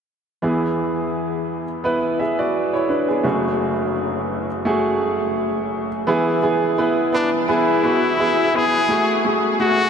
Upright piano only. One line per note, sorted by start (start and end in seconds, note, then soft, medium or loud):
0.42 3.21 E2 soft
0.42 3.21 E3 soft
0.42 1.64 B3 medium
0.42 1.64 E4 soft
0.42 1.65 G#4 medium
1.84 2.19 B3 medium
1.84 2.19 E4 medium
1.84 2.19 B4 medium
2.19 2.38 G#4 soft
2.19 2.38 E5 soft
2.39 2.72 F#4 soft
2.39 2.72 D5 medium
2.73 2.89 E4 soft
2.73 2.88 C#5 medium
2.89 3.08 D4 soft
2.89 3.08 B4 soft
3.08 3.42 B3 soft
3.08 3.23 G#4 soft
3.23 6.03 F#1 medium
3.23 6.03 F#2 soft
3.23 4.46 A3 medium
3.23 4.46 F#4 medium
3.23 4.47 G#4 medium
4.65 5.88 A3 medium
4.65 5.88 F#4 medium
4.65 5.88 G#4 medium
6.07 7.09 E3 medium
6.07 6.38 B3 medium
6.07 6.38 E4 medium
6.07 6.38 G#4 medium
6.42 6.73 B3 medium
6.42 6.73 E4 medium
6.42 6.73 G#4 medium
6.78 7.09 B3 medium
6.78 7.09 E4 medium
6.78 7.09 B4 medium
7.12 7.43 B3 medium
7.12 7.44 E4 medium
7.12 7.44 B4 medium
7.48 7.79 B3 medium
7.48 7.79 E4 medium
7.48 7.79 G#4 medium
7.83 8.14 B3 medium
7.83 8.15 E4 soft
7.83 8.15 F#4 medium
8.19 8.49 B3 medium
8.19 8.50 E4 medium
8.19 8.50 G#4 medium
8.55 8.85 B3 medium
8.55 8.85 E4 medium
8.55 8.86 B4 medium
8.89 9.20 A3 medium
8.89 9.20 F#4 medium
8.89 9.20 G#4 medium
9.25 9.56 A3 medium
9.25 9.56 F#4 medium
9.25 9.56 G#4 medium
9.60 9.90 A3 medium
9.60 9.90 F#4 medium
9.60 9.90 G#4 medium